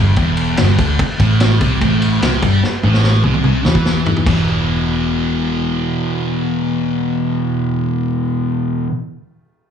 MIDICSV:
0, 0, Header, 1, 4, 480
1, 0, Start_track
1, 0, Tempo, 408998
1, 1170, Time_signature, 4, 2, 24, 8
1, 11389, End_track
2, 0, Start_track
2, 0, Title_t, "Distorted electric guitar"
2, 0, Program_c, 0, 30
2, 0, Note_on_c, 0, 43, 105
2, 192, Note_off_c, 0, 43, 0
2, 197, Note_on_c, 0, 40, 108
2, 676, Note_off_c, 0, 40, 0
2, 681, Note_on_c, 0, 43, 88
2, 915, Note_on_c, 0, 50, 104
2, 918, Note_off_c, 0, 43, 0
2, 1156, Note_off_c, 0, 50, 0
2, 1401, Note_on_c, 0, 45, 109
2, 1872, Note_off_c, 0, 45, 0
2, 1877, Note_on_c, 0, 48, 106
2, 2117, Note_off_c, 0, 48, 0
2, 2124, Note_on_c, 0, 45, 105
2, 2601, Note_off_c, 0, 45, 0
2, 2605, Note_on_c, 0, 48, 93
2, 2841, Note_off_c, 0, 48, 0
2, 2841, Note_on_c, 0, 55, 116
2, 3079, Note_off_c, 0, 55, 0
2, 3331, Note_on_c, 0, 45, 112
2, 3804, Note_off_c, 0, 45, 0
2, 3809, Note_on_c, 0, 48, 107
2, 4033, Note_off_c, 0, 48, 0
2, 4047, Note_on_c, 0, 48, 116
2, 4291, Note_off_c, 0, 48, 0
2, 4291, Note_on_c, 0, 52, 114
2, 4995, Note_on_c, 0, 40, 94
2, 5004, Note_off_c, 0, 52, 0
2, 5020, Note_on_c, 0, 47, 104
2, 5039, Note_on_c, 0, 52, 97
2, 10419, Note_off_c, 0, 40, 0
2, 10444, Note_off_c, 0, 47, 0
2, 10463, Note_off_c, 0, 52, 0
2, 11389, End_track
3, 0, Start_track
3, 0, Title_t, "Picked electric bass"
3, 0, Program_c, 1, 34
3, 0, Note_on_c, 1, 31, 80
3, 192, Note_off_c, 1, 31, 0
3, 207, Note_on_c, 1, 28, 95
3, 655, Note_off_c, 1, 28, 0
3, 698, Note_on_c, 1, 31, 99
3, 918, Note_off_c, 1, 31, 0
3, 928, Note_on_c, 1, 38, 88
3, 1153, Note_off_c, 1, 38, 0
3, 1407, Note_on_c, 1, 33, 104
3, 1856, Note_off_c, 1, 33, 0
3, 1893, Note_on_c, 1, 36, 92
3, 2115, Note_off_c, 1, 36, 0
3, 2134, Note_on_c, 1, 33, 106
3, 2580, Note_off_c, 1, 33, 0
3, 2618, Note_on_c, 1, 36, 101
3, 2838, Note_off_c, 1, 36, 0
3, 2853, Note_on_c, 1, 43, 97
3, 3076, Note_off_c, 1, 43, 0
3, 3337, Note_on_c, 1, 33, 100
3, 3781, Note_off_c, 1, 33, 0
3, 3810, Note_on_c, 1, 36, 86
3, 4034, Note_off_c, 1, 36, 0
3, 4052, Note_on_c, 1, 36, 107
3, 4275, Note_off_c, 1, 36, 0
3, 4295, Note_on_c, 1, 40, 94
3, 4966, Note_off_c, 1, 40, 0
3, 5011, Note_on_c, 1, 28, 94
3, 10387, Note_off_c, 1, 28, 0
3, 11389, End_track
4, 0, Start_track
4, 0, Title_t, "Drums"
4, 191, Note_on_c, 9, 51, 94
4, 200, Note_on_c, 9, 36, 104
4, 308, Note_off_c, 9, 51, 0
4, 317, Note_off_c, 9, 36, 0
4, 433, Note_on_c, 9, 51, 89
4, 550, Note_off_c, 9, 51, 0
4, 672, Note_on_c, 9, 51, 119
4, 679, Note_on_c, 9, 38, 107
4, 789, Note_off_c, 9, 51, 0
4, 796, Note_off_c, 9, 38, 0
4, 920, Note_on_c, 9, 51, 79
4, 923, Note_on_c, 9, 36, 100
4, 1037, Note_off_c, 9, 51, 0
4, 1041, Note_off_c, 9, 36, 0
4, 1165, Note_on_c, 9, 36, 121
4, 1166, Note_on_c, 9, 51, 117
4, 1283, Note_off_c, 9, 36, 0
4, 1283, Note_off_c, 9, 51, 0
4, 1404, Note_on_c, 9, 51, 84
4, 1406, Note_on_c, 9, 36, 110
4, 1522, Note_off_c, 9, 51, 0
4, 1523, Note_off_c, 9, 36, 0
4, 1645, Note_on_c, 9, 51, 109
4, 1652, Note_on_c, 9, 38, 125
4, 1762, Note_off_c, 9, 51, 0
4, 1769, Note_off_c, 9, 38, 0
4, 1886, Note_on_c, 9, 51, 81
4, 1888, Note_on_c, 9, 36, 111
4, 2004, Note_off_c, 9, 51, 0
4, 2006, Note_off_c, 9, 36, 0
4, 2127, Note_on_c, 9, 51, 108
4, 2130, Note_on_c, 9, 36, 104
4, 2244, Note_off_c, 9, 51, 0
4, 2247, Note_off_c, 9, 36, 0
4, 2368, Note_on_c, 9, 51, 78
4, 2486, Note_off_c, 9, 51, 0
4, 2609, Note_on_c, 9, 51, 103
4, 2616, Note_on_c, 9, 38, 117
4, 2726, Note_off_c, 9, 51, 0
4, 2733, Note_off_c, 9, 38, 0
4, 2846, Note_on_c, 9, 36, 104
4, 2846, Note_on_c, 9, 51, 76
4, 2963, Note_off_c, 9, 51, 0
4, 2964, Note_off_c, 9, 36, 0
4, 3092, Note_on_c, 9, 38, 67
4, 3210, Note_off_c, 9, 38, 0
4, 3325, Note_on_c, 9, 48, 79
4, 3442, Note_off_c, 9, 48, 0
4, 3450, Note_on_c, 9, 38, 74
4, 3566, Note_off_c, 9, 38, 0
4, 3566, Note_on_c, 9, 38, 88
4, 3683, Note_off_c, 9, 38, 0
4, 3796, Note_on_c, 9, 47, 82
4, 3913, Note_off_c, 9, 47, 0
4, 3918, Note_on_c, 9, 47, 71
4, 4035, Note_on_c, 9, 45, 85
4, 4036, Note_off_c, 9, 47, 0
4, 4152, Note_off_c, 9, 45, 0
4, 4281, Note_on_c, 9, 38, 101
4, 4399, Note_off_c, 9, 38, 0
4, 4402, Note_on_c, 9, 36, 86
4, 4519, Note_off_c, 9, 36, 0
4, 4526, Note_on_c, 9, 38, 92
4, 4643, Note_off_c, 9, 38, 0
4, 4767, Note_on_c, 9, 43, 110
4, 4884, Note_off_c, 9, 43, 0
4, 4887, Note_on_c, 9, 43, 99
4, 5005, Note_off_c, 9, 43, 0
4, 5005, Note_on_c, 9, 36, 109
4, 5006, Note_on_c, 9, 49, 99
4, 5122, Note_off_c, 9, 36, 0
4, 5123, Note_off_c, 9, 49, 0
4, 11389, End_track
0, 0, End_of_file